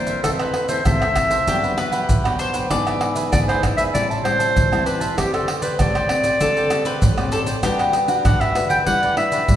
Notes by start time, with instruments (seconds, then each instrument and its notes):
Already playing: nylon-string guitar G2 E3 A#3 C4, clarinet C5
0.06 cavaquinho A#4 C5 E5, pandeiro, maracas
0.23 nylon-string guitar F2 E3 A3 C4, cavaquinho F4 A4 C5 E5, clarinet A4, pandeiro, tamborim, maracas, surdo
0.39 cavaquinho A4 C5 E5, clarinet B4, pandeiro, tamborim, maracas
0.54 pandeiro, tamborim
0.68 nylon-string guitar E3 A3 C4, cavaquinho A4 C5 E5, clarinet C5, pandeiro, maracas
0.85 nylon-string guitar C3 E3 A3 C4, cavaquinho F4 A4 C5 E5, clarinet E5, pandeiro, tamborim, maracas, surdo
1.00 cavaquinho A4 C5 E5, pandeiro, tamborim, maracas
1.15 nylon-string guitar E3 A3 C4, muted cavaquinho stroke, pandeiro, tamborim, maracas, surdo
1.30 cavaquinho A4 C5 E5, pandeiro, maracas
1.47 nylon-string guitar G2 F#3 B3 D4, cavaquinho D4 G4 B4 F#5, mandolin G4, pandeiro, maracas, surdo
1.63 cavaquinho G4 B4 F#5, pandeiro, maracas
1.77 nylon-string guitar F#3 B3 D4, mandolin B4, muted cavaquinho stroke, pandeiro, tamborim
1.91 cavaquinho G4 B4 F#5, pandeiro, maracas
2.09 nylon-string guitar D3, pandeiro, maracas, surdo
2.24 nylon-string guitar F#3 B3 D4, cavaquinho G4 B4 F#5, pandeiro, tamborim, maracas
2.38 cavaquinho D4 G4 B4 F#5, mandolin C5, pandeiro, maracas
2.53 cavaquinho G4 B4 F#5, pandeiro, maracas
2.70 nylon-string guitar G#2 E3 B3 D4, cavaquinho D4 G#4 B4 E5, mandolin D5, pandeiro, tamborim, maracas, surdo
2.87 cavaquinho G#4 B4 E5, pandeiro, tamborim, maracas
3.01 pandeiro, tamborim
3.15 cavaquinho G#4 B4 E5, pandeiro, maracas
3.32 nylon-string guitar G#2 E3 B3 D4, cavaquinho D4 G#4 B4 E5, clarinet D5, pandeiro, tamborim, maracas, surdo
3.48 cavaquinho G#4 B4 E5, clarinet C5, pandeiro, tamborim, maracas
3.63 nylon-string guitar E3 B3 D4, muted cavaquinho stroke, pandeiro, tamborim, maracas, surdo
3.77 cavaquinho G#4 B4 E5, clarinet E5, pandeiro, maracas
3.94 nylon-string guitar A2 G3 C4 E4, cavaquinho G4 C5 E5 A5, clarinet D5, pandeiro, maracas, surdo
4.10 cavaquinho C5 E5 A5, pandeiro, maracas
4.24 nylon-string guitar G3 C4 E4, clarinet C5, muted cavaquinho stroke, pandeiro, tamborim
4.39 cavaquinho C5 E5 A5, pandeiro, maracas
4.56 nylon-string guitar E3, pandeiro, maracas, surdo
4.72 nylon-string guitar G3 C4 E4, cavaquinho C5 E5 A5, pandeiro, tamborim, maracas
4.86 cavaquinho G4 C5 E5 A5, clarinet B4, pandeiro, maracas
5.00 cavaquinho C5 E5 A5, pandeiro, maracas
5.17 nylon-string guitar D3 A3 C4 G4, cavaquinho D4 G4 C5 D5, clarinet G4, pandeiro, tamborim, maracas, surdo
5.33 cavaquinho G4 C5 D5, clarinet A4, pandeiro, tamborim, maracas
5.48 pandeiro, tamborim
5.62 cavaquinho G4 C5 D5, clarinet B4, pandeiro, maracas
5.78 nylon-string guitar A2 A3 C4 G4, cavaquinho D4 G4 C5 D5, clarinet D5, pandeiro, tamborim, maracas, surdo
5.94 cavaquinho G4 C5 D5, pandeiro, tamborim, maracas
6.09 nylon-string guitar A3 C4 G4, muted cavaquinho stroke, pandeiro, tamborim
6.23 cavaquinho G4 C5 D5, pandeiro, maracas
6.40 nylon-string guitar D3, cavaquinho D4 G4 C5 D5, mandolin A4, pandeiro, maracas, surdo
6.56 cavaquinho G4 C5 D5, pandeiro, maracas
6.70 nylon-string guitar A3 C4 G4, muted cavaquinho stroke, pandeiro, tamborim, maracas
6.85 cavaquinho G4 C5 D5, mandolin B4, pandeiro, maracas
7.02 nylon-string guitar A2, pandeiro, maracas, surdo
7.17 nylon-string guitar A3 C4 G4, cavaquinho G4 C5 D5, pandeiro, tamborim, maracas
7.32 cavaquinho D4 G4 C5 D5, mandolin A4, pandeiro, maracas
7.46 cavaquinho G4 C5 D5, pandeiro, maracas
7.63 nylon-string guitar G3 D4 F#4 B4, cavaquinho D4 G4 B4 F#5, mandolin G4, pandeiro, tamborim, maracas, surdo
7.79 cavaquinho G4 B4 F#5, pandeiro, tamborim, maracas
7.93 pandeiro, tamborim, maracas
8.08 nylon-string guitar D4 F#4 B4, cavaquinho G4 B4 F#5, pandeiro, maracas
8.25 nylon-string guitar D3, cavaquinho D4 G4 B4 F#5, clarinet F#5, pandeiro, tamborim, maracas, surdo
8.41 cavaquinho G4 B4 F#5, clarinet E5, pandeiro, tamborim, maracas
8.55 nylon-string guitar D4 F#4 B4, muted cavaquinho stroke, pandeiro, tamborim, maracas
8.69 cavaquinho G4 B4 F#5, clarinet G5, pandeiro, maracas
8.86 nylon-string guitar G3 D4 E4 B4, cavaquinho E4 G4 B4 D5, clarinet F#5, pandeiro, maracas, surdo
9.02 cavaquinho G4 B4 D5, pandeiro, maracas
9.17 nylon-string guitar D4 E4 B4, clarinet E5, muted cavaquinho stroke, pandeiro, tamborim
9.31 cavaquinho G4 B4 D5, pandeiro, maracas
9.48 nylon-string guitar G3, pandeiro, maracas, surdo